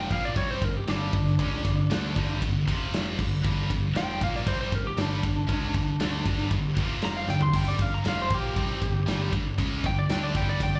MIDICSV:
0, 0, Header, 1, 5, 480
1, 0, Start_track
1, 0, Key_signature, -2, "minor"
1, 0, Tempo, 511945
1, 1304, Time_signature, 4, 2, 24, 8
1, 10123, End_track
2, 0, Start_track
2, 0, Title_t, "Lead electric guitar"
2, 0, Program_c, 0, 29
2, 0, Note_on_c, 0, 79, 100
2, 103, Note_off_c, 0, 79, 0
2, 114, Note_on_c, 0, 77, 78
2, 224, Note_off_c, 0, 77, 0
2, 234, Note_on_c, 0, 74, 82
2, 344, Note_off_c, 0, 74, 0
2, 349, Note_on_c, 0, 73, 80
2, 462, Note_off_c, 0, 73, 0
2, 475, Note_on_c, 0, 72, 79
2, 605, Note_off_c, 0, 72, 0
2, 605, Note_on_c, 0, 70, 80
2, 722, Note_off_c, 0, 70, 0
2, 722, Note_on_c, 0, 67, 80
2, 829, Note_off_c, 0, 67, 0
2, 840, Note_on_c, 0, 62, 85
2, 2237, Note_off_c, 0, 62, 0
2, 3723, Note_on_c, 0, 79, 107
2, 3950, Note_off_c, 0, 79, 0
2, 3971, Note_on_c, 0, 77, 94
2, 4088, Note_off_c, 0, 77, 0
2, 4088, Note_on_c, 0, 74, 81
2, 4196, Note_off_c, 0, 74, 0
2, 4199, Note_on_c, 0, 72, 78
2, 4308, Note_off_c, 0, 72, 0
2, 4319, Note_on_c, 0, 72, 85
2, 4453, Note_off_c, 0, 72, 0
2, 4453, Note_on_c, 0, 70, 89
2, 4559, Note_off_c, 0, 70, 0
2, 4566, Note_on_c, 0, 67, 91
2, 4675, Note_off_c, 0, 67, 0
2, 4699, Note_on_c, 0, 62, 100
2, 6087, Note_off_c, 0, 62, 0
2, 6607, Note_on_c, 0, 82, 97
2, 6715, Note_off_c, 0, 82, 0
2, 6719, Note_on_c, 0, 77, 96
2, 6831, Note_off_c, 0, 77, 0
2, 6845, Note_on_c, 0, 79, 93
2, 6954, Note_off_c, 0, 79, 0
2, 6960, Note_on_c, 0, 84, 83
2, 7071, Note_off_c, 0, 84, 0
2, 7086, Note_on_c, 0, 79, 93
2, 7194, Note_off_c, 0, 79, 0
2, 7203, Note_on_c, 0, 74, 96
2, 7312, Note_off_c, 0, 74, 0
2, 7331, Note_on_c, 0, 77, 84
2, 7436, Note_off_c, 0, 77, 0
2, 7448, Note_on_c, 0, 82, 91
2, 7555, Note_off_c, 0, 82, 0
2, 7579, Note_on_c, 0, 77, 96
2, 7680, Note_off_c, 0, 77, 0
2, 7705, Note_on_c, 0, 72, 90
2, 7803, Note_off_c, 0, 72, 0
2, 7825, Note_on_c, 0, 67, 108
2, 8736, Note_off_c, 0, 67, 0
2, 9249, Note_on_c, 0, 79, 98
2, 9353, Note_off_c, 0, 79, 0
2, 9363, Note_on_c, 0, 74, 102
2, 9469, Note_on_c, 0, 79, 103
2, 9470, Note_off_c, 0, 74, 0
2, 9583, Note_off_c, 0, 79, 0
2, 9595, Note_on_c, 0, 74, 94
2, 9706, Note_off_c, 0, 74, 0
2, 9717, Note_on_c, 0, 79, 82
2, 9827, Note_off_c, 0, 79, 0
2, 9839, Note_on_c, 0, 74, 84
2, 9948, Note_off_c, 0, 74, 0
2, 9968, Note_on_c, 0, 79, 84
2, 10072, Note_off_c, 0, 79, 0
2, 10082, Note_on_c, 0, 74, 95
2, 10123, Note_off_c, 0, 74, 0
2, 10123, End_track
3, 0, Start_track
3, 0, Title_t, "Distorted electric guitar"
3, 0, Program_c, 1, 30
3, 0, Note_on_c, 1, 41, 97
3, 0, Note_on_c, 1, 48, 101
3, 0, Note_on_c, 1, 53, 124
3, 96, Note_off_c, 1, 53, 0
3, 97, Note_off_c, 1, 41, 0
3, 101, Note_off_c, 1, 48, 0
3, 105, Note_on_c, 1, 46, 92
3, 108, Note_on_c, 1, 53, 99
3, 115, Note_on_c, 1, 58, 102
3, 336, Note_off_c, 1, 46, 0
3, 338, Note_off_c, 1, 53, 0
3, 341, Note_off_c, 1, 58, 0
3, 343, Note_on_c, 1, 48, 99
3, 349, Note_on_c, 1, 55, 101
3, 355, Note_on_c, 1, 60, 106
3, 576, Note_off_c, 1, 48, 0
3, 579, Note_off_c, 1, 55, 0
3, 582, Note_off_c, 1, 60, 0
3, 586, Note_on_c, 1, 43, 63
3, 591, Note_on_c, 1, 50, 78
3, 777, Note_off_c, 1, 43, 0
3, 779, Note_off_c, 1, 50, 0
3, 824, Note_on_c, 1, 43, 84
3, 828, Note_on_c, 1, 50, 95
3, 837, Note_on_c, 1, 55, 89
3, 1057, Note_off_c, 1, 43, 0
3, 1059, Note_off_c, 1, 50, 0
3, 1063, Note_off_c, 1, 55, 0
3, 1068, Note_on_c, 1, 43, 68
3, 1070, Note_on_c, 1, 50, 69
3, 1258, Note_off_c, 1, 43, 0
3, 1259, Note_off_c, 1, 50, 0
3, 1303, Note_on_c, 1, 49, 99
3, 1311, Note_on_c, 1, 56, 100
3, 1319, Note_on_c, 1, 61, 116
3, 1537, Note_off_c, 1, 49, 0
3, 1541, Note_off_c, 1, 56, 0
3, 1545, Note_off_c, 1, 61, 0
3, 1553, Note_on_c, 1, 43, 69
3, 1555, Note_on_c, 1, 50, 65
3, 1741, Note_off_c, 1, 43, 0
3, 1743, Note_off_c, 1, 50, 0
3, 1785, Note_on_c, 1, 50, 101
3, 1791, Note_on_c, 1, 57, 106
3, 1800, Note_on_c, 1, 62, 111
3, 2019, Note_off_c, 1, 50, 0
3, 2022, Note_off_c, 1, 57, 0
3, 2026, Note_off_c, 1, 62, 0
3, 2029, Note_on_c, 1, 43, 86
3, 2034, Note_on_c, 1, 50, 85
3, 2042, Note_on_c, 1, 55, 90
3, 2258, Note_off_c, 1, 43, 0
3, 2263, Note_off_c, 1, 50, 0
3, 2267, Note_off_c, 1, 55, 0
3, 2269, Note_on_c, 1, 43, 73
3, 2276, Note_on_c, 1, 50, 78
3, 2460, Note_off_c, 1, 43, 0
3, 2464, Note_off_c, 1, 50, 0
3, 2509, Note_on_c, 1, 41, 91
3, 2518, Note_on_c, 1, 48, 94
3, 2524, Note_on_c, 1, 53, 94
3, 2982, Note_off_c, 1, 41, 0
3, 2986, Note_off_c, 1, 48, 0
3, 2989, Note_off_c, 1, 53, 0
3, 2992, Note_on_c, 1, 43, 67
3, 2994, Note_on_c, 1, 50, 74
3, 3182, Note_off_c, 1, 43, 0
3, 3184, Note_off_c, 1, 50, 0
3, 3222, Note_on_c, 1, 43, 112
3, 3230, Note_on_c, 1, 50, 111
3, 3235, Note_on_c, 1, 55, 110
3, 3453, Note_off_c, 1, 43, 0
3, 3460, Note_off_c, 1, 50, 0
3, 3465, Note_off_c, 1, 55, 0
3, 3465, Note_on_c, 1, 43, 65
3, 3471, Note_on_c, 1, 50, 71
3, 3659, Note_off_c, 1, 43, 0
3, 3662, Note_off_c, 1, 50, 0
3, 3705, Note_on_c, 1, 41, 91
3, 3710, Note_on_c, 1, 48, 107
3, 3719, Note_on_c, 1, 53, 109
3, 3937, Note_off_c, 1, 53, 0
3, 3939, Note_off_c, 1, 48, 0
3, 3941, Note_off_c, 1, 41, 0
3, 3943, Note_on_c, 1, 46, 99
3, 3949, Note_on_c, 1, 53, 95
3, 3956, Note_on_c, 1, 58, 104
3, 4174, Note_off_c, 1, 46, 0
3, 4178, Note_on_c, 1, 48, 102
3, 4181, Note_off_c, 1, 53, 0
3, 4184, Note_on_c, 1, 55, 101
3, 4186, Note_off_c, 1, 58, 0
3, 4191, Note_on_c, 1, 60, 112
3, 4417, Note_off_c, 1, 48, 0
3, 4420, Note_off_c, 1, 55, 0
3, 4422, Note_on_c, 1, 43, 58
3, 4423, Note_off_c, 1, 60, 0
3, 4427, Note_on_c, 1, 50, 71
3, 4618, Note_off_c, 1, 43, 0
3, 4620, Note_off_c, 1, 50, 0
3, 4663, Note_on_c, 1, 43, 74
3, 4667, Note_on_c, 1, 50, 92
3, 4674, Note_on_c, 1, 55, 112
3, 4893, Note_off_c, 1, 43, 0
3, 4897, Note_off_c, 1, 50, 0
3, 4904, Note_on_c, 1, 43, 68
3, 4905, Note_off_c, 1, 55, 0
3, 4908, Note_on_c, 1, 50, 72
3, 5099, Note_off_c, 1, 43, 0
3, 5101, Note_off_c, 1, 50, 0
3, 5134, Note_on_c, 1, 49, 107
3, 5140, Note_on_c, 1, 56, 119
3, 5147, Note_on_c, 1, 61, 104
3, 5375, Note_off_c, 1, 49, 0
3, 5378, Note_off_c, 1, 56, 0
3, 5381, Note_on_c, 1, 43, 55
3, 5382, Note_off_c, 1, 61, 0
3, 5388, Note_on_c, 1, 50, 68
3, 5578, Note_off_c, 1, 43, 0
3, 5581, Note_off_c, 1, 50, 0
3, 5627, Note_on_c, 1, 50, 113
3, 5630, Note_on_c, 1, 57, 108
3, 5635, Note_on_c, 1, 62, 96
3, 5861, Note_off_c, 1, 50, 0
3, 5863, Note_off_c, 1, 57, 0
3, 5865, Note_off_c, 1, 62, 0
3, 5867, Note_on_c, 1, 43, 97
3, 5871, Note_on_c, 1, 50, 102
3, 5875, Note_on_c, 1, 55, 115
3, 6095, Note_off_c, 1, 43, 0
3, 6099, Note_off_c, 1, 50, 0
3, 6105, Note_off_c, 1, 55, 0
3, 6106, Note_on_c, 1, 43, 72
3, 6111, Note_on_c, 1, 50, 80
3, 6300, Note_off_c, 1, 43, 0
3, 6302, Note_off_c, 1, 50, 0
3, 6346, Note_on_c, 1, 41, 82
3, 6356, Note_on_c, 1, 48, 97
3, 6360, Note_on_c, 1, 53, 92
3, 6820, Note_off_c, 1, 41, 0
3, 6823, Note_off_c, 1, 48, 0
3, 6826, Note_on_c, 1, 43, 69
3, 6827, Note_off_c, 1, 53, 0
3, 6827, Note_on_c, 1, 50, 76
3, 7020, Note_off_c, 1, 43, 0
3, 7020, Note_off_c, 1, 50, 0
3, 7066, Note_on_c, 1, 43, 113
3, 7073, Note_on_c, 1, 50, 114
3, 7078, Note_on_c, 1, 55, 114
3, 7300, Note_off_c, 1, 43, 0
3, 7303, Note_off_c, 1, 50, 0
3, 7306, Note_off_c, 1, 55, 0
3, 7312, Note_on_c, 1, 43, 59
3, 7316, Note_on_c, 1, 50, 74
3, 7502, Note_off_c, 1, 43, 0
3, 7504, Note_off_c, 1, 50, 0
3, 7541, Note_on_c, 1, 41, 99
3, 7550, Note_on_c, 1, 48, 102
3, 7558, Note_on_c, 1, 53, 112
3, 7772, Note_off_c, 1, 53, 0
3, 7777, Note_off_c, 1, 41, 0
3, 7778, Note_off_c, 1, 48, 0
3, 7781, Note_on_c, 1, 46, 104
3, 7784, Note_on_c, 1, 53, 92
3, 7791, Note_on_c, 1, 58, 109
3, 8015, Note_off_c, 1, 46, 0
3, 8018, Note_off_c, 1, 53, 0
3, 8018, Note_on_c, 1, 48, 106
3, 8022, Note_off_c, 1, 58, 0
3, 8029, Note_on_c, 1, 55, 105
3, 8036, Note_on_c, 1, 60, 110
3, 8255, Note_off_c, 1, 48, 0
3, 8261, Note_off_c, 1, 55, 0
3, 8262, Note_on_c, 1, 43, 63
3, 8263, Note_on_c, 1, 50, 74
3, 8264, Note_off_c, 1, 60, 0
3, 8456, Note_off_c, 1, 43, 0
3, 8457, Note_off_c, 1, 50, 0
3, 8497, Note_on_c, 1, 43, 88
3, 8508, Note_on_c, 1, 50, 93
3, 8509, Note_on_c, 1, 55, 95
3, 8734, Note_off_c, 1, 43, 0
3, 8740, Note_off_c, 1, 50, 0
3, 8740, Note_off_c, 1, 55, 0
3, 8746, Note_on_c, 1, 43, 68
3, 8749, Note_on_c, 1, 50, 66
3, 8938, Note_off_c, 1, 43, 0
3, 8939, Note_off_c, 1, 50, 0
3, 8982, Note_on_c, 1, 49, 100
3, 8995, Note_on_c, 1, 56, 120
3, 8996, Note_on_c, 1, 61, 108
3, 9216, Note_off_c, 1, 49, 0
3, 9223, Note_off_c, 1, 56, 0
3, 9223, Note_off_c, 1, 61, 0
3, 9230, Note_on_c, 1, 43, 70
3, 9239, Note_on_c, 1, 50, 71
3, 9419, Note_off_c, 1, 43, 0
3, 9423, Note_off_c, 1, 50, 0
3, 9469, Note_on_c, 1, 50, 102
3, 9478, Note_on_c, 1, 57, 105
3, 9484, Note_on_c, 1, 62, 107
3, 9699, Note_off_c, 1, 50, 0
3, 9704, Note_off_c, 1, 57, 0
3, 9706, Note_off_c, 1, 62, 0
3, 9711, Note_on_c, 1, 43, 85
3, 9719, Note_on_c, 1, 50, 113
3, 9724, Note_on_c, 1, 55, 102
3, 9935, Note_off_c, 1, 43, 0
3, 9940, Note_off_c, 1, 50, 0
3, 9946, Note_off_c, 1, 55, 0
3, 9946, Note_on_c, 1, 43, 70
3, 9951, Note_on_c, 1, 50, 82
3, 10123, Note_off_c, 1, 43, 0
3, 10123, Note_off_c, 1, 50, 0
3, 10123, End_track
4, 0, Start_track
4, 0, Title_t, "Picked electric bass"
4, 0, Program_c, 2, 34
4, 100, Note_on_c, 2, 34, 89
4, 324, Note_off_c, 2, 34, 0
4, 342, Note_on_c, 2, 36, 87
4, 566, Note_off_c, 2, 36, 0
4, 577, Note_on_c, 2, 31, 74
4, 803, Note_off_c, 2, 31, 0
4, 819, Note_on_c, 2, 31, 96
4, 1044, Note_off_c, 2, 31, 0
4, 1058, Note_on_c, 2, 31, 80
4, 1284, Note_off_c, 2, 31, 0
4, 1301, Note_on_c, 2, 37, 78
4, 1526, Note_off_c, 2, 37, 0
4, 1543, Note_on_c, 2, 31, 80
4, 1768, Note_off_c, 2, 31, 0
4, 1782, Note_on_c, 2, 38, 102
4, 2007, Note_off_c, 2, 38, 0
4, 2031, Note_on_c, 2, 31, 89
4, 2252, Note_off_c, 2, 31, 0
4, 2269, Note_on_c, 2, 31, 76
4, 2492, Note_off_c, 2, 31, 0
4, 2510, Note_on_c, 2, 29, 87
4, 2956, Note_off_c, 2, 29, 0
4, 2991, Note_on_c, 2, 31, 93
4, 3213, Note_off_c, 2, 31, 0
4, 3227, Note_on_c, 2, 31, 78
4, 3451, Note_off_c, 2, 31, 0
4, 3471, Note_on_c, 2, 31, 72
4, 3693, Note_off_c, 2, 31, 0
4, 3698, Note_on_c, 2, 29, 88
4, 3927, Note_off_c, 2, 29, 0
4, 3952, Note_on_c, 2, 34, 92
4, 4174, Note_off_c, 2, 34, 0
4, 4187, Note_on_c, 2, 36, 88
4, 4412, Note_off_c, 2, 36, 0
4, 4424, Note_on_c, 2, 31, 73
4, 4650, Note_off_c, 2, 31, 0
4, 4658, Note_on_c, 2, 31, 98
4, 4887, Note_off_c, 2, 31, 0
4, 4906, Note_on_c, 2, 31, 86
4, 5131, Note_off_c, 2, 31, 0
4, 5147, Note_on_c, 2, 37, 87
4, 5372, Note_off_c, 2, 37, 0
4, 5384, Note_on_c, 2, 31, 72
4, 5610, Note_off_c, 2, 31, 0
4, 5624, Note_on_c, 2, 38, 108
4, 5850, Note_off_c, 2, 38, 0
4, 5863, Note_on_c, 2, 31, 99
4, 6090, Note_off_c, 2, 31, 0
4, 6101, Note_on_c, 2, 31, 73
4, 6328, Note_off_c, 2, 31, 0
4, 6347, Note_on_c, 2, 29, 84
4, 6794, Note_off_c, 2, 29, 0
4, 6828, Note_on_c, 2, 31, 81
4, 7051, Note_off_c, 2, 31, 0
4, 7064, Note_on_c, 2, 31, 89
4, 7289, Note_off_c, 2, 31, 0
4, 7301, Note_on_c, 2, 31, 71
4, 7528, Note_off_c, 2, 31, 0
4, 7547, Note_on_c, 2, 29, 95
4, 7770, Note_off_c, 2, 29, 0
4, 7786, Note_on_c, 2, 34, 85
4, 8010, Note_off_c, 2, 34, 0
4, 8028, Note_on_c, 2, 36, 86
4, 8251, Note_off_c, 2, 36, 0
4, 8268, Note_on_c, 2, 31, 71
4, 8490, Note_off_c, 2, 31, 0
4, 8509, Note_on_c, 2, 31, 104
4, 8730, Note_off_c, 2, 31, 0
4, 8740, Note_on_c, 2, 31, 82
4, 8966, Note_off_c, 2, 31, 0
4, 8987, Note_on_c, 2, 37, 75
4, 9209, Note_off_c, 2, 37, 0
4, 9226, Note_on_c, 2, 31, 86
4, 9448, Note_off_c, 2, 31, 0
4, 9452, Note_on_c, 2, 38, 96
4, 9680, Note_off_c, 2, 38, 0
4, 9703, Note_on_c, 2, 31, 81
4, 9926, Note_off_c, 2, 31, 0
4, 9941, Note_on_c, 2, 31, 81
4, 10123, Note_off_c, 2, 31, 0
4, 10123, End_track
5, 0, Start_track
5, 0, Title_t, "Drums"
5, 100, Note_on_c, 9, 36, 100
5, 101, Note_on_c, 9, 51, 67
5, 194, Note_off_c, 9, 36, 0
5, 195, Note_off_c, 9, 51, 0
5, 337, Note_on_c, 9, 51, 88
5, 338, Note_on_c, 9, 36, 108
5, 431, Note_off_c, 9, 51, 0
5, 432, Note_off_c, 9, 36, 0
5, 579, Note_on_c, 9, 36, 94
5, 579, Note_on_c, 9, 51, 71
5, 673, Note_off_c, 9, 36, 0
5, 673, Note_off_c, 9, 51, 0
5, 820, Note_on_c, 9, 51, 84
5, 829, Note_on_c, 9, 38, 99
5, 914, Note_off_c, 9, 51, 0
5, 922, Note_off_c, 9, 38, 0
5, 1060, Note_on_c, 9, 51, 82
5, 1061, Note_on_c, 9, 36, 105
5, 1154, Note_off_c, 9, 51, 0
5, 1155, Note_off_c, 9, 36, 0
5, 1193, Note_on_c, 9, 38, 33
5, 1287, Note_off_c, 9, 38, 0
5, 1304, Note_on_c, 9, 36, 104
5, 1306, Note_on_c, 9, 51, 105
5, 1398, Note_off_c, 9, 36, 0
5, 1400, Note_off_c, 9, 51, 0
5, 1545, Note_on_c, 9, 36, 92
5, 1546, Note_on_c, 9, 51, 76
5, 1639, Note_off_c, 9, 36, 0
5, 1640, Note_off_c, 9, 51, 0
5, 1788, Note_on_c, 9, 51, 103
5, 1797, Note_on_c, 9, 38, 111
5, 1882, Note_off_c, 9, 51, 0
5, 1891, Note_off_c, 9, 38, 0
5, 2027, Note_on_c, 9, 36, 104
5, 2032, Note_on_c, 9, 51, 69
5, 2121, Note_off_c, 9, 36, 0
5, 2126, Note_off_c, 9, 51, 0
5, 2268, Note_on_c, 9, 36, 94
5, 2270, Note_on_c, 9, 51, 113
5, 2362, Note_off_c, 9, 36, 0
5, 2364, Note_off_c, 9, 51, 0
5, 2509, Note_on_c, 9, 36, 96
5, 2515, Note_on_c, 9, 51, 77
5, 2603, Note_off_c, 9, 36, 0
5, 2609, Note_off_c, 9, 51, 0
5, 2752, Note_on_c, 9, 51, 91
5, 2761, Note_on_c, 9, 38, 100
5, 2846, Note_off_c, 9, 51, 0
5, 2855, Note_off_c, 9, 38, 0
5, 2990, Note_on_c, 9, 36, 102
5, 2996, Note_on_c, 9, 49, 106
5, 3084, Note_off_c, 9, 36, 0
5, 3089, Note_off_c, 9, 49, 0
5, 3231, Note_on_c, 9, 36, 114
5, 3325, Note_off_c, 9, 36, 0
5, 3470, Note_on_c, 9, 36, 92
5, 3474, Note_on_c, 9, 51, 70
5, 3564, Note_off_c, 9, 36, 0
5, 3567, Note_off_c, 9, 51, 0
5, 3708, Note_on_c, 9, 51, 85
5, 3716, Note_on_c, 9, 38, 100
5, 3802, Note_off_c, 9, 51, 0
5, 3810, Note_off_c, 9, 38, 0
5, 3950, Note_on_c, 9, 36, 114
5, 3954, Note_on_c, 9, 51, 73
5, 4044, Note_off_c, 9, 36, 0
5, 4048, Note_off_c, 9, 51, 0
5, 4081, Note_on_c, 9, 38, 36
5, 4174, Note_off_c, 9, 38, 0
5, 4188, Note_on_c, 9, 36, 112
5, 4188, Note_on_c, 9, 51, 106
5, 4282, Note_off_c, 9, 36, 0
5, 4282, Note_off_c, 9, 51, 0
5, 4428, Note_on_c, 9, 36, 89
5, 4428, Note_on_c, 9, 51, 65
5, 4522, Note_off_c, 9, 36, 0
5, 4522, Note_off_c, 9, 51, 0
5, 4665, Note_on_c, 9, 51, 96
5, 4673, Note_on_c, 9, 38, 102
5, 4758, Note_off_c, 9, 51, 0
5, 4767, Note_off_c, 9, 38, 0
5, 4905, Note_on_c, 9, 51, 80
5, 4907, Note_on_c, 9, 36, 100
5, 4999, Note_off_c, 9, 51, 0
5, 5001, Note_off_c, 9, 36, 0
5, 5146, Note_on_c, 9, 36, 115
5, 5146, Note_on_c, 9, 51, 100
5, 5239, Note_off_c, 9, 51, 0
5, 5240, Note_off_c, 9, 36, 0
5, 5383, Note_on_c, 9, 51, 73
5, 5386, Note_on_c, 9, 36, 98
5, 5477, Note_off_c, 9, 51, 0
5, 5479, Note_off_c, 9, 36, 0
5, 5624, Note_on_c, 9, 51, 100
5, 5632, Note_on_c, 9, 38, 104
5, 5718, Note_off_c, 9, 51, 0
5, 5726, Note_off_c, 9, 38, 0
5, 5865, Note_on_c, 9, 36, 106
5, 5865, Note_on_c, 9, 51, 82
5, 5959, Note_off_c, 9, 36, 0
5, 5959, Note_off_c, 9, 51, 0
5, 5987, Note_on_c, 9, 38, 36
5, 6081, Note_off_c, 9, 38, 0
5, 6101, Note_on_c, 9, 51, 111
5, 6103, Note_on_c, 9, 36, 92
5, 6195, Note_off_c, 9, 51, 0
5, 6197, Note_off_c, 9, 36, 0
5, 6343, Note_on_c, 9, 51, 81
5, 6345, Note_on_c, 9, 36, 110
5, 6437, Note_off_c, 9, 51, 0
5, 6439, Note_off_c, 9, 36, 0
5, 6579, Note_on_c, 9, 51, 99
5, 6588, Note_on_c, 9, 38, 100
5, 6673, Note_off_c, 9, 51, 0
5, 6681, Note_off_c, 9, 38, 0
5, 6831, Note_on_c, 9, 38, 71
5, 6925, Note_off_c, 9, 38, 0
5, 6945, Note_on_c, 9, 43, 101
5, 7038, Note_off_c, 9, 43, 0
5, 7062, Note_on_c, 9, 57, 112
5, 7065, Note_on_c, 9, 36, 112
5, 7156, Note_off_c, 9, 57, 0
5, 7159, Note_off_c, 9, 36, 0
5, 7303, Note_on_c, 9, 51, 74
5, 7306, Note_on_c, 9, 36, 102
5, 7397, Note_off_c, 9, 51, 0
5, 7399, Note_off_c, 9, 36, 0
5, 7547, Note_on_c, 9, 51, 83
5, 7555, Note_on_c, 9, 38, 99
5, 7641, Note_off_c, 9, 51, 0
5, 7649, Note_off_c, 9, 38, 0
5, 7785, Note_on_c, 9, 51, 77
5, 7787, Note_on_c, 9, 36, 117
5, 7879, Note_off_c, 9, 51, 0
5, 7881, Note_off_c, 9, 36, 0
5, 8028, Note_on_c, 9, 36, 109
5, 8030, Note_on_c, 9, 51, 100
5, 8122, Note_off_c, 9, 36, 0
5, 8124, Note_off_c, 9, 51, 0
5, 8268, Note_on_c, 9, 36, 88
5, 8271, Note_on_c, 9, 51, 69
5, 8362, Note_off_c, 9, 36, 0
5, 8365, Note_off_c, 9, 51, 0
5, 8509, Note_on_c, 9, 51, 90
5, 8518, Note_on_c, 9, 38, 99
5, 8603, Note_off_c, 9, 51, 0
5, 8611, Note_off_c, 9, 38, 0
5, 8745, Note_on_c, 9, 36, 96
5, 8745, Note_on_c, 9, 51, 78
5, 8838, Note_off_c, 9, 51, 0
5, 8839, Note_off_c, 9, 36, 0
5, 8986, Note_on_c, 9, 36, 99
5, 8986, Note_on_c, 9, 51, 100
5, 9080, Note_off_c, 9, 36, 0
5, 9080, Note_off_c, 9, 51, 0
5, 9226, Note_on_c, 9, 36, 96
5, 9226, Note_on_c, 9, 51, 75
5, 9320, Note_off_c, 9, 36, 0
5, 9320, Note_off_c, 9, 51, 0
5, 9464, Note_on_c, 9, 51, 94
5, 9473, Note_on_c, 9, 38, 108
5, 9558, Note_off_c, 9, 51, 0
5, 9566, Note_off_c, 9, 38, 0
5, 9702, Note_on_c, 9, 51, 80
5, 9703, Note_on_c, 9, 36, 101
5, 9796, Note_off_c, 9, 51, 0
5, 9797, Note_off_c, 9, 36, 0
5, 9941, Note_on_c, 9, 36, 95
5, 9942, Note_on_c, 9, 51, 119
5, 10035, Note_off_c, 9, 36, 0
5, 10036, Note_off_c, 9, 51, 0
5, 10123, End_track
0, 0, End_of_file